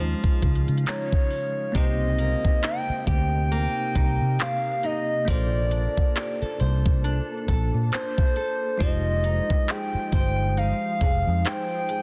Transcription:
Already playing: D#2 C#3 G#3 C4 C#4 D#4 F4 D#5
0.00 F3
0.24 kick
0.42 C#2, kick, closed hi-hat
0.55 closed hi-hat
0.68 C#3, closed hi-hat
0.78 closed hi-hat
0.86 D#4 C#5, clap, closed hi-hat
1.12 kick
1.31 open hi-hat
1.72 C2 C3 A#3 C4 D#4 G4 D#5, kick, closed hi-hat
1.77 C5
2.19 A#3, closed hi-hat
2.45 muted fingered electric bass stroke, kick
2.63 D#4 G5, clap, closed hi-hat
2.89 muted fingered electric bass stroke
3.07 D2 G4 G5, kick, closed hi-hat
3.52 A#3, closed hi-hat
3.95 C2 D#4, kick, closed hi-hat
4.21 C3
4.39 G4 F5, clap, closed hi-hat
4.83 D#4 D#5, closed hi-hat
5.25 A#1 A#3 D4 F4 A4 C5 D5, kick, closed hi-hat
5.30 C5
5.71 D4, closed hi-hat
5.97 muted fingered electric bass stroke, kick
6.16 G4, clap, closed hi-hat
6.42 A4, muted fingered electric bass stroke
6.60 C2 C5, closed hi-hat
6.86 kick
7.04 D4, closed hi-hat
7.48 A#1 A4, kick, closed hi-hat
7.74 A#2
7.92 C5, clap, closed hi-hat
8.18 kick
8.36 A4, closed hi-hat
8.78 F1 F3 G#3 D#4 F4 G4 C5, kick, closed hi-hat
8.82 C5 D#5
9.24 D#4, closed hi-hat
9.50 muted fingered electric bass stroke, kick
9.68 G#4 G5, clap, closed hi-hat
9.94 muted fingered electric bass stroke
10.12 G1 C5 G5, kick, closed hi-hat
10.57 D#4 F5, closed hi-hat
11.01 F1 G#4, kick, closed hi-hat
11.27 F2
11.45 C5 G5, clap, closed hi-hat
11.89 G#4, closed hi-hat

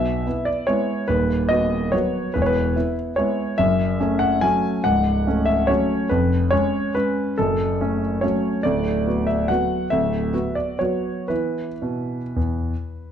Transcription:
Already playing: B1 B2 E5
0.27 B3 E4
0.45 D5
0.67 G#3 B3 E4 C#5
1.08 D#1 D#2 B4
1.49 B3 F#4 D#5
1.92 F#3 B3 F#4 C#5
2.34 E1 E2 B4
2.42 C#5
2.46 B4
2.76 B3 E4
3.16 G#3 B3 E4 C#5
3.58 F#1 F#2 E5
4.00 A3 C#4
4.19 F#5
4.41 F#3 A3 C#4 G#5
4.84 C#1 C#2 F#5
5.27 A3 C#4
5.45 E5
5.67 F#3 A3 C#4 C#5
6.09 F1 F2 B4
6.51 G#3 C#4 C#5
6.95 G#3 C#4 B4
7.38 F#1 F#2 A4
7.81 A3 C#4
8.21 F#3 A3 C#4 C#5
8.63 D1 D2 D5
9.07 B3 F#4
9.27 E5
9.48 F#3 B3 F#4 F#5
9.90 D1 D2 E5
10.33 B3 F#4
10.55 D5
10.79 F#3 B3 F#4 C#5
11.28 E3 B3 E4 B4
11.82 B2
12.36 E2

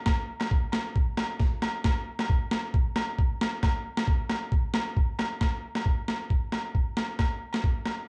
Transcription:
0.06 kick, snare, low agogo
0.40 snare, low agogo
0.51 kick
0.72 snare, low agogo
0.96 kick
1.17 snare, low agogo
1.40 kick, snare
1.62 snare, low agogo
1.84 kick, snare, low agogo
2.19 snare, low agogo
2.30 kick
2.51 snare, low agogo
2.74 kick
2.96 snare, low agogo
3.19 kick
3.41 snare, low agogo
3.63 kick, snare, low agogo
3.97 snare, low agogo
4.08 kick
4.29 snare, low agogo
4.52 kick
4.74 snare, low agogo
4.97 kick
5.19 snare, low agogo
5.41 kick, snare, low agogo
5.75 snare, low agogo
5.86 kick
6.08 snare, low agogo
6.30 kick
6.52 snare, low agogo
6.75 kick
6.97 snare, low agogo
7.19 kick, snare, low agogo
7.53 snare, low agogo
7.64 kick
7.86 snare, low agogo

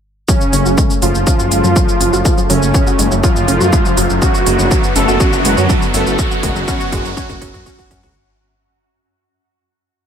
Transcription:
0.28 F#2 C#3 F#3 A3 C#4, kick, riser, shaker
0.41 shaker
0.53 F#1 C#4, open hi-hat, shaker
0.66 F#1 F#4, shaker
0.78 G#3, kick, shaker
0.90 F#3, shaker
1.02 F#1 F3 F#3 F4, open hi-hat, shaker
1.15 F#1, shaker
1.27 C#4, kick, shaker
1.39 F#1 F#4, shaker
1.51 F#1 G#3, open hi-hat, shaker
1.64 F#2 F#3, shaker
1.76 F#3, kick, shaker
1.89 shaker
2.00 F#1 C#4, open hi-hat, shaker
2.13 F#1 F#4, shaker
2.25 G#3, kick, shaker
2.38 F#3, shaker
2.50 F#1 C#3 F#3 C#4, open hi-hat, shaker
2.62 F#1, shaker
2.74 C#4, kick, shaker
2.87 F#4, shaker
2.99 F#1 G#3, open hi-hat, shaker
3.11 F#1 F#3, shaker
3.24 F3 F#3 F4, kick, shaker
3.36 F#1, shaker
3.48 F#1 C#4, open hi-hat, shaker
3.61 F#2 F#4, shaker
3.73 G#3, kick, shaker
3.85 F#3, shaker
3.97 F#1 F#3, open hi-hat, shaker
4.10 F#1, shaker
4.22 D3 F#3 B3 C#4 F#4, kick, shaker
4.34 F#4, shaker
4.46 F#1 G#3, open hi-hat, shaker
4.59 F#1 F#3, shaker
4.71 F#3, kick, shaker
4.84 shaker
4.96 F#1 A3 C#4 A4, open hi-hat, shaker
5.08 F#1 F#4, shaker
5.20 F#3 C#4 F#4, kick, shaker
5.33 F#1 F#4, shaker
5.45 F#1 G#3, open hi-hat, shaker
5.57 F#2 F#3, shaker
5.69 F#3, kick, shaker
5.82 shaker
5.94 F#1 A3 C#4 A4, open hi-hat, shaker
6.07 F#1 F#4, shaker
6.19 F#3 C#4 F#4, kick, shaker
6.31 F#4, shaker
6.43 F#1 G#3, kick, open hi-hat, shaker
6.56 F#1 F#3, shaker
6.68 F#3 C#4 F#4, kick, shaker
6.80 F#4, shaker
6.92 F#1 G#3, kick, open hi-hat, shaker
7.05 F#1 F#3, shaker
7.17 F#3 C#4 F#4, kick, shaker
7.29 F#1 F#4, kick, shaker
7.41 F#1 F#3 C#4 F#4, kick, open hi-hat, shaker
7.54 F#2 F#4, kick, shaker
7.66 F#3 C#4 F#4, kick, shaker
7.79 F#4, kick, shaker
7.91 F#2 F#3 C#4 F#4, kick, open hi-hat, shaker
8.03 C#2 F#4, kick, shaker

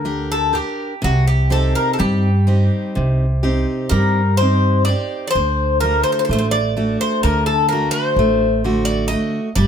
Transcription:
Already playing: D2 D3 A#4
0.05 D4 G4 A#4
0.32 A4
0.53 D4 G4 A#4
1.02 C2 C3 F#4
1.28 G4
1.50 C4 D#4 G4 A4
1.75 A#4
1.93 A4
1.99 G2 G3 G4
2.47 C4 D#4 G4
2.95 C2 C3
3.43 C4 D#4 G4
3.89 G2 G3 A#4
4.37 G4 C5
4.41 C4 D#4
4.85 C4 G4 D5
4.89 D#4
5.27 C5 D5
5.35 D2 D3
5.80 A3 D4 A#4
5.85 F#4
6.04 C5
6.12 C5
6.19 C5
6.25 C5
6.29 A1 A3 C5
6.39 C5
6.51 D5
6.77 A3 D4 F#4
7.01 C5
7.23 D2 D3 A#4
7.46 A4
7.69 A3 D4 A#4
7.73 F#4
7.91 C5
8.16 A1 A3
8.64 D3 A3 F#4
8.85 D5
9.08 A3 D#5
9.13 F#4
9.55 G1 G3 D5

